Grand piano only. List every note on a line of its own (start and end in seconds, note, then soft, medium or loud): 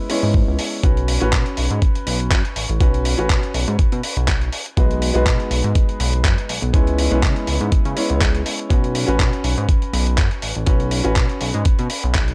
0.09 0.81 G#3 medium
0.09 0.81 B3 medium
0.09 0.81 C#4 medium
0.09 0.81 E4 medium
0.09 0.81 C#5 medium
0.83 1.18 C#4 medium
0.83 1.18 F#4 medium
0.83 1.19 B4 medium
1.20 2.77 C#4 medium
1.20 2.78 F#4 medium
1.20 2.78 B4 loud
2.80 3.15 C#4 medium
2.80 3.15 F#4 medium
2.80 3.15 B4 loud
3.17 4.51 C#4 medium
3.17 4.51 F#4 medium
3.17 4.52 B4 loud
4.77 5.12 G#3 medium
4.77 5.12 B3 medium
4.77 5.12 D#4 medium
4.77 5.12 F#4 medium
4.77 5.12 B4 medium
5.14 6.70 G#3 medium
5.14 6.71 B3 medium
5.14 6.71 D#4 medium
5.14 6.71 F#4 medium
5.14 6.71 B4 loud
6.73 7.08 G#3 medium
6.73 7.08 B3 medium
6.73 7.08 C#4 medium
6.73 7.08 E4 medium
6.73 7.09 B4 loud
7.10 7.94 G#3 medium
7.10 7.94 B3 medium
7.10 7.94 C#4 medium
7.10 7.95 E4 medium
7.10 7.95 B4 loud
7.96 8.67 G#3 medium
7.96 8.67 B3 medium
7.96 8.68 C#4 medium
7.96 8.68 E4 medium
7.96 8.68 C#5 medium
8.69 9.05 C#4 medium
8.69 9.05 F#4 medium
8.69 9.05 B4 medium
9.06 10.64 C#4 medium
9.06 10.64 F#4 medium
9.06 10.65 B4 loud
10.66 11.01 C#4 medium
10.66 11.02 F#4 medium
10.66 11.02 B4 loud
11.04 12.34 C#4 medium
11.04 12.34 F#4 medium
11.04 12.34 B4 loud